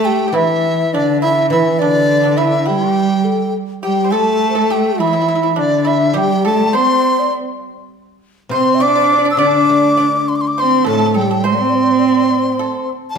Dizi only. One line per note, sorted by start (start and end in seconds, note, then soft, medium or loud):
0.05 0.37 G5 medium
0.36 0.95 E5 medium
0.94 1.21 D5 medium
1.21 1.49 E5 medium
1.51 1.81 E5 medium
1.79 2.39 D5 medium
2.37 2.68 E5 medium
2.66 3.54 G5 medium
3.83 4.13 G5 medium
4.11 4.73 A5 loud
4.71 5.00 G5 medium
4.99 5.61 E5 medium
5.59 5.89 D5 medium
5.87 6.19 E5 medium
6.18 6.46 G5 loud
6.47 6.77 A5 medium
6.75 7.33 C6 loud
8.53 8.83 C6 medium
8.82 9.30 D6 loud
9.31 9.40 E6 medium
9.38 10.30 D6 loud
10.28 10.37 C6 medium
10.36 10.43 D6 medium
10.41 10.49 C6 medium
10.47 10.61 D6 medium
10.60 10.87 C6 loud
10.87 11.17 A5 medium
11.16 11.47 G5 medium
11.45 12.90 C6 medium
13.10 13.18 A5 medium